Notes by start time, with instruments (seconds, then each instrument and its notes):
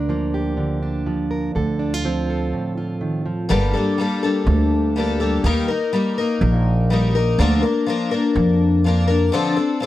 Already playing: upright bass D2, steel-string acoustic guitar D3 D4 A#4
0.09 steel-string acoustic guitar F3 A#3
0.34 steel-string acoustic guitar G4
0.57 steel-string acoustic guitar D3
0.83 steel-string acoustic guitar D4
1.06 steel-string acoustic guitar F3
1.31 steel-string acoustic guitar A#4
1.55 upright bass D2, steel-string acoustic guitar D3 A4
1.79 steel-string acoustic guitar D4
1.94 steel-string acoustic guitar F4
2.05 steel-string acoustic guitar F3 C4
2.30 steel-string acoustic guitar A4
2.53 steel-string acoustic guitar A2
2.78 steel-string acoustic guitar F4
3.01 steel-string acoustic guitar D#3
3.26 steel-string acoustic guitar F3
3.49 upright bass G1, twelve-string acoustic guitar G2 D3 G3 A#3 D4 A4
3.74 twelve-string acoustic guitar G3 A#3 D4 A4
3.98 twelve-string acoustic guitar G3 A#3 D4 A4
4.23 twelve-string acoustic guitar G3 A#3 D4 A4
4.47 upright bass D2
4.96 twelve-string acoustic guitar G3 A#3 D4 A4
5.20 twelve-string acoustic guitar G3 A#3 D4 A4
5.44 upright bass D#2, twelve-string acoustic guitar D#3 G3 A#3 D#4 A#4
5.68 twelve-string acoustic guitar A#3 D#4 A#4
5.93 twelve-string acoustic guitar G3 A#3 D#4 A#4
6.18 twelve-string acoustic guitar A#3 D#4 A#4
6.41 upright bass A#1
6.90 twelve-string acoustic guitar G3 A#3 D#4 A#4
7.15 twelve-string acoustic guitar A#3 D#4 A#4
7.38 upright bass D2, twelve-string acoustic guitar D3 F3 A#3 D4 A#4
7.62 twelve-string acoustic guitar A#3 D4 A#4
7.86 twelve-string acoustic guitar F3 A#3 D4 A#4
8.11 twelve-string acoustic guitar A#3 D4 A#4
8.35 upright bass F2
8.84 twelve-string acoustic guitar F3 A#3 D4 A#4
9.08 twelve-string acoustic guitar A#3 D4 A#4
9.32 twelve-string acoustic guitar D3 F3 C4 D4 A4
9.57 twelve-string acoustic guitar C4 D4 A4
9.80 twelve-string acoustic guitar F3 C4 D4